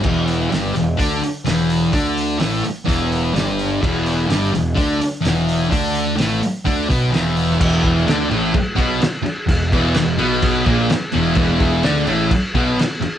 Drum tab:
CC |x---------------|----------------|x---------------|----------------|
HH |--o-o-o-o-o-o-o-|o-o-o-o-o-o-o-o-|--o-o-o-o-o-o-o-|o-o-o-o-o-o-o-o-|
SD |----o-------o---|----o-------o---|----o-------o---|----o-------o--o|
BD |o-------o-------|o-------o-------|o-------o-------|o-------o-o-----|

CC |x-x-x-x-x-x-x-x-|x-x-x-x-x-x-x-x-|x-x-x-x-x-x-x-x-|
HH |----------------|----------------|----------------|
SD |---oo-------o---|----o-------o---|----oo------o---|
BD |o-o-----o-o-----|o-o-----o-o-----|o-o-----o-o-----|